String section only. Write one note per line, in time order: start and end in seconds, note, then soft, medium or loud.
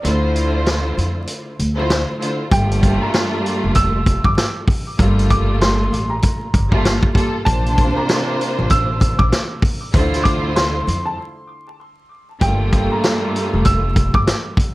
0.03 1.49 D3 loud
0.03 1.49 A3 medium
0.03 1.49 E4 medium
0.03 1.49 F4 loud
0.03 1.50 C5 loud
1.75 2.17 D3 loud
1.75 2.17 A3 medium
1.75 2.17 E4 medium
1.75 2.17 F4 medium
1.75 2.18 C5 loud
2.19 2.49 D3 medium
2.19 2.49 A3 medium
2.19 2.49 E4 medium
2.19 2.50 F4 medium
2.19 2.50 C5 medium
2.51 4.65 G2 loud
2.51 4.65 G3 medium
2.51 4.66 A3 loud
2.51 4.66 A#3 medium
2.51 4.66 F4 loud
4.98 6.44 G2 loud
4.98 6.44 G3 loud
4.98 6.45 A3 loud
4.98 6.44 A#3 loud
4.98 6.44 F4 loud
6.71 7.12 G2 loud
6.71 7.12 G3 medium
6.71 7.13 A3 loud
6.71 7.12 A#3 medium
6.71 7.13 F4 loud
7.14 7.44 G2 medium
7.14 7.44 G3 medium
7.14 7.43 A#3 medium
7.14 7.45 F4 medium
7.14 7.45 A4 medium
7.44 9.59 C3 loud
7.44 9.59 A#3 loud
7.44 9.60 D4 loud
7.44 9.60 F4 medium
7.44 9.60 C5 loud
9.93 11.17 D3 loud
9.93 11.17 A3 medium
9.93 11.18 E4 medium
9.93 11.18 F4 loud
9.93 11.18 C5 loud
12.40 14.55 G2 loud
12.40 14.55 G3 loud
12.40 14.56 A3 loud
12.40 14.55 A#3 medium
12.40 14.56 F4 loud